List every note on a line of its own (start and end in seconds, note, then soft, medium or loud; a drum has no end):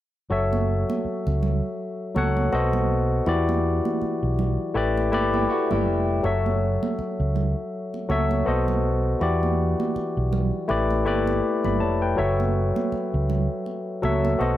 0.30 0.83 F#1 medium
0.30 1.50 F#3 medium
0.30 1.50 F#4 medium
0.30 1.51 A4 medium
0.30 1.51 C#5 medium
0.30 1.51 E5 medium
0.53 high conga medium
0.90 high conga medium
1.05 muted fingered electric bass stroke soft
1.27 1.60 C#2 medium
1.27 muted conga soft
1.43 low conga medium
2.15 2.49 C#2 medium
2.15 2.52 F#3 medium
2.15 2.51 F#4 medium
2.15 2.52 A4 medium
2.15 2.54 C#5 medium
2.15 2.54 F#5 medium
2.15 high conga medium
2.37 high conga medium
2.52 3.20 B1 medium
2.52 3.14 B3 medium
2.52 3.14 F#4 medium
2.52 3.15 A4 medium
2.52 3.15 C5 medium
2.52 3.15 D#5 medium
2.52 muted conga soft
2.73 high conga medium
2.73 low conga medium
3.26 3.80 E2 loud
3.26 4.46 E3 medium
3.26 4.47 E4 medium
3.26 4.47 F#4 medium
3.26 4.47 G4 medium
3.26 4.48 D5 medium
3.26 muted conga soft
3.49 muted conga soft
3.49 high conga medium
3.85 high conga medium
4.01 muted fingered electric bass stroke soft
4.01 muted conga soft
4.23 4.56 B1 medium
4.39 low conga medium
4.74 5.12 A1 medium
4.74 5.06 A3 medium
4.74 5.06 E4 medium
4.74 5.06 G4 medium
4.74 5.07 B4 medium
4.74 5.07 D5 medium
4.97 muted conga soft
5.11 5.46 G1 medium
5.11 6.03 A3 medium
5.11 6.04 E4 medium
5.11 6.04 G4 medium
5.11 6.04 B4 medium
5.11 6.05 D5 medium
5.11 high conga medium
5.34 5.49 G3 soft
5.34 5.49 E4 medium
5.34 high conga medium
5.50 5.70 A3 medium
5.50 5.70 F#4 medium
5.71 5.87 G1 medium
5.71 6.22 G3 soft
5.71 6.21 E4 medium
5.71 high conga medium
5.71 low conga medium
5.87 6.20 F1 medium
6.23 6.77 F#1 medium
6.23 7.43 F#3 medium
6.23 7.44 F#4 medium
6.23 7.44 A4 medium
6.23 7.44 C#5 medium
6.23 7.45 E5 medium
6.23 muted conga soft
6.46 high conga medium
6.83 high conga medium
6.99 muted fingered electric bass stroke soft
6.99 muted conga soft
7.20 7.53 C#2 medium
7.36 low conga medium
7.94 muted conga soft
8.09 8.43 C#2 medium
8.09 8.46 F#3 medium
8.09 8.45 F#4 medium
8.09 8.46 A4 medium
8.09 8.47 C#5 medium
8.09 8.47 E5 medium
8.09 high conga medium
8.31 high conga medium
8.45 9.13 B1 medium
8.45 9.08 B3 medium
8.45 9.08 F#4 medium
8.45 9.08 A4 medium
8.45 9.09 C5 medium
8.45 9.09 D#5 medium
8.68 muted conga soft
8.68 high conga medium
8.68 low conga medium
9.20 9.74 E2 medium
9.20 10.40 E3 medium
9.20 10.40 E4 medium
9.20 10.41 F#4 medium
9.20 10.41 G4 medium
9.20 10.42 D5 medium
9.20 muted conga soft
9.43 high conga soft
9.80 high conga medium
9.96 muted fingered electric bass stroke soft
9.96 muted conga soft
10.17 10.50 B1 medium
10.33 low conga medium
10.68 11.07 A1 medium
10.68 10.99 A3 medium
10.68 11.00 E4 medium
10.68 11.00 G4 medium
10.68 11.00 B4 medium
10.68 11.01 D5 medium
10.68 muted conga soft
10.91 muted conga soft
11.05 11.40 G1 medium
11.05 11.97 A3 medium
11.05 11.97 E4 medium
11.05 11.98 G4 medium
11.05 11.44 B4 medium
11.05 11.44 D5 medium
11.05 high conga medium
11.27 high conga medium
11.65 11.81 G1 medium
11.65 11.80 D5 soft
11.65 11.80 B5 medium
11.65 muted conga soft
11.65 high conga medium
11.65 low conga medium
11.80 12.14 F1 medium
11.80 12.01 C#5 soft
11.80 12.01 A5 medium
12.02 12.37 B4 medium
12.02 12.37 G5 medium
12.16 12.71 F#1 loud
12.16 13.37 F#3 medium
12.16 13.37 F#4 medium
12.16 13.38 A4 medium
12.16 13.38 C#5 medium
12.16 13.38 E5 medium
12.40 muted conga soft
12.40 high conga medium
12.76 high conga medium
12.92 muted fingered electric bass stroke soft
12.92 muted conga soft
13.14 13.47 C#2 medium
13.30 low conga medium
13.66 muted conga soft
14.02 14.37 C#2 medium
14.02 14.40 F#3 medium
14.02 14.38 F#4 medium
14.02 14.39 A4 medium
14.02 14.41 C#5 medium
14.02 14.41 E5 medium
14.02 high conga medium
14.25 high conga medium
14.39 14.57 B1 medium
14.39 14.57 B3 medium
14.39 14.57 F#4 medium
14.39 14.57 A4 medium
14.39 14.57 C5 medium
14.39 14.57 D#5 medium
14.39 muted conga soft